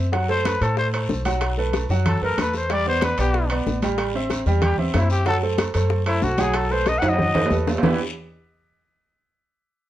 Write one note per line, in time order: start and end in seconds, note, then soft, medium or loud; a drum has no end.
0.00 0.55 F#2 medium
0.12 0.25 F#3 medium
0.12 0.26 F#4 medium
0.12 0.26 F#5 medium
0.12 high bongo medium
0.12 high conga soft
0.12 high timbale medium
0.12 long guiro medium
0.28 0.55 A3 medium
0.28 0.55 A4 medium
0.28 0.55 C5 medium
0.28 0.47 C5 loud
0.28 high bongo soft
0.28 high conga soft
0.45 0.64 B4 medium
0.45 high bongo medium
0.45 high conga medium
0.45 high timbale medium
0.45 short guiro medium
0.60 1.06 A2 medium
0.60 0.87 A3 medium
0.60 0.87 A4 medium
0.60 0.78 A4 medium
0.60 0.88 C5 medium
0.60 high bongo soft
0.60 high conga soft
0.60 high timbale medium
0.60 short guiro medium
0.77 0.87 C5 medium
0.77 high bongo medium
0.77 high conga soft
0.77 long guiro medium
0.93 1.19 A3 medium
0.93 1.19 A4 medium
0.93 1.20 C5 medium
0.93 high conga soft
0.93 high timbale medium
1.09 1.84 B1 medium
1.09 high bongo soft
1.09 low bongo medium
1.09 high conga medium
1.09 short guiro medium
1.25 1.52 F#3 medium
1.25 1.52 F#4 medium
1.25 1.52 F#5 medium
1.25 high bongo soft
1.25 high conga medium
1.25 high timbale medium
1.25 short guiro medium
1.41 high bongo medium
1.41 high conga soft
1.41 high timbale medium
1.41 long guiro medium
1.57 1.84 A3 medium
1.57 1.84 A4 medium
1.57 1.84 B4 medium
1.57 high bongo soft
1.57 high conga soft
1.73 high bongo medium
1.73 high conga medium
1.73 high timbale medium
1.73 short guiro medium
1.89 2.19 F#2 loud
1.89 2.16 F#3 medium
1.89 2.16 F#4 medium
1.89 2.16 F#5 medium
1.89 high bongo soft
1.89 short guiro medium
2.05 2.21 A4 medium
2.05 high bongo medium
2.05 high conga soft
2.05 low conga medium
2.05 high timbale medium
2.05 long guiro medium
2.21 2.36 F#2 medium
2.21 2.35 A3 medium
2.21 2.35 A4 medium
2.21 2.42 A#4 medium
2.21 2.35 B4 medium
2.21 high conga soft
2.37 3.12 E2 medium
2.37 2.64 A3 medium
2.37 2.64 A4 medium
2.37 2.64 B4 medium
2.37 2.55 B4 medium
2.37 high bongo soft
2.37 low bongo medium
2.37 high conga medium
2.37 high timbale medium
2.37 short guiro medium
2.53 2.74 C5 medium
2.53 high bongo soft
2.53 high conga soft
2.53 short guiro medium
2.69 2.83 G3 medium
2.69 2.83 G4 medium
2.69 2.87 D5 medium
2.69 2.83 G5 medium
2.69 high bongo medium
2.69 high conga soft
2.69 high timbale medium
2.69 long guiro medium
2.85 3.12 B3 medium
2.85 3.13 B4 medium
2.85 3.05 C5 medium
2.85 3.13 D5 medium
2.85 high bongo soft
2.85 high conga soft
3.01 3.19 B4 medium
3.01 high bongo medium
3.01 high conga loud
3.01 high timbale medium
3.01 short guiro medium
3.17 3.63 B1 medium
3.17 3.44 B3 medium
3.17 3.49 G4 medium
3.17 3.45 B4 medium
3.17 3.45 D5 medium
3.17 high bongo soft
3.17 high conga soft
3.17 high timbale medium
3.17 short guiro medium
3.33 high bongo medium
3.33 high conga soft
3.33 long guiro medium
3.49 3.77 B3 medium
3.49 3.77 B4 medium
3.49 3.77 D5 medium
3.49 high conga soft
3.49 high timbale medium
3.66 4.41 A1 medium
3.66 high bongo soft
3.66 low bongo medium
3.66 high conga medium
3.66 short guiro medium
3.82 4.09 G3 medium
3.82 4.09 G4 medium
3.82 4.09 G5 medium
3.82 high bongo soft
3.82 high conga medium
3.82 high timbale medium
3.82 short guiro medium
3.98 high bongo medium
3.98 high conga soft
3.98 high timbale medium
3.98 long guiro medium
4.14 4.41 C4 medium
4.14 4.41 C5 medium
4.14 4.41 E5 medium
4.14 high bongo soft
4.14 high conga soft
4.30 high bongo medium
4.30 high conga medium
4.30 high timbale medium
4.30 short guiro medium
4.46 4.76 E2 medium
4.46 4.73 G3 medium
4.46 4.73 G4 medium
4.46 4.73 G5 medium
4.46 high bongo soft
4.46 short guiro medium
4.62 4.78 G4 medium
4.62 high bongo medium
4.62 high conga soft
4.62 low conga medium
4.62 high timbale medium
4.62 long guiro medium
4.78 4.93 E2 medium
4.78 4.96 B3 soft
4.78 4.92 C4 medium
4.78 4.92 C5 medium
4.78 4.92 E5 medium
4.78 high conga soft
4.78 low conga medium
4.94 5.69 F#2 medium
4.94 5.21 C4 medium
4.94 5.11 E4 medium
4.94 5.21 C5 medium
4.94 5.21 E5 medium
4.94 high bongo soft
4.94 low bongo medium
4.94 high conga medium
4.94 high timbale medium
4.94 low timbale medium
4.94 short guiro medium
5.10 5.26 G4 medium
5.10 high bongo soft
5.10 short guiro medium
5.26 5.40 F#3 medium
5.26 5.40 F#4 medium
5.26 5.37 A4 loud
5.26 5.40 F#5 medium
5.26 high bongo medium
5.26 high conga soft
5.26 high timbale medium
5.26 long guiro medium
5.42 5.69 A3 medium
5.42 5.69 A4 medium
5.42 5.70 C5 medium
5.42 high bongo soft
5.42 high conga soft
5.58 high bongo medium
5.58 high conga loud
5.58 high timbale medium
5.58 short guiro medium
5.74 6.20 F#2 loud
5.74 6.01 A3 medium
5.74 6.01 A4 medium
5.74 6.02 C5 medium
5.74 high bongo soft
5.74 high conga soft
5.74 high timbale medium
5.74 short guiro medium
5.90 high bongo medium
5.90 high conga soft
5.90 long guiro medium
6.07 6.33 A3 medium
6.07 6.25 E4 medium
6.07 6.33 A4 medium
6.07 6.33 C5 medium
6.07 high conga soft
6.07 high timbale medium
6.22 6.97 B1 medium
6.22 6.42 F#4 medium
6.22 high bongo soft
6.22 low bongo medium
6.22 high conga medium
6.22 short guiro medium
6.38 6.65 F#3 medium
6.38 6.65 F#4 medium
6.38 6.58 G#4 medium
6.38 6.65 F#5 medium
6.38 high bongo soft
6.38 high conga medium
6.38 high timbale medium
6.38 short guiro medium
6.54 6.74 A4 medium
6.54 high bongo medium
6.54 high conga soft
6.54 high timbale loud
6.54 long guiro medium
6.71 6.97 A3 medium
6.71 6.98 A4 medium
6.71 6.98 B4 medium
6.71 6.90 C5 medium
6.71 high bongo soft
6.71 high conga soft
6.86 7.00 D#5 medium
6.86 high bongo medium
6.86 high conga medium
6.86 high timbale medium
6.86 short guiro medium
6.99 7.32 F#2 loud
6.99 7.10 F#5 loud
6.99 high timbale medium
7.03 7.29 F#3 medium
7.03 7.29 F#4 medium
7.03 7.30 F#5 medium
7.03 high bongo soft
7.03 short guiro medium
7.09 7.57 D#5 loud
7.13 high timbale medium
7.19 high bongo medium
7.19 high conga soft
7.19 low conga medium
7.19 long guiro medium
7.35 7.50 F#2 medium
7.35 7.48 A3 medium
7.35 7.48 A4 medium
7.35 7.48 B4 medium
7.35 high bongo medium
7.35 high conga soft
7.35 low conga medium
7.35 high timbale medium
7.46 low timbale medium
7.50 7.79 E2 medium
7.50 7.78 A3 medium
7.50 7.77 A4 medium
7.50 7.78 B4 medium
7.50 high conga medium
7.50 short guiro medium
7.67 low bongo medium
7.67 high conga soft
7.67 low timbale medium
7.67 short guiro medium
7.78 low timbale loud
7.82 7.98 E2 medium
7.82 7.98 E3 medium
7.82 7.98 B3 medium
7.82 7.98 D4 medium
7.82 7.98 E4 medium
7.82 7.98 G4 medium
7.82 7.98 B4 loud
7.82 low bongo loud
7.82 low conga loud
7.82 low timbale loud
7.82 long guiro loud